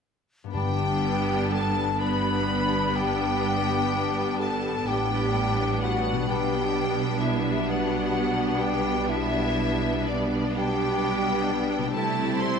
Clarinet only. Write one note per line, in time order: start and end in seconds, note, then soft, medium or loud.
0.55 1.54 G4 soft
1.53 2.02 A4 soft
2.01 2.95 B4 soft
2.96 4.41 G4 soft
4.40 4.90 A4 soft
4.88 5.84 G4 soft
5.83 6.28 F#4 soft
6.29 7.20 G4 medium
7.21 7.55 E4 soft
7.69 8.63 F#4 soft
8.62 9.08 G4 soft
9.08 10.10 E4 soft
10.09 10.59 D4 soft
10.57 11.69 G4 medium
11.96 12.43 A4 soft
12.42 12.59 C5 medium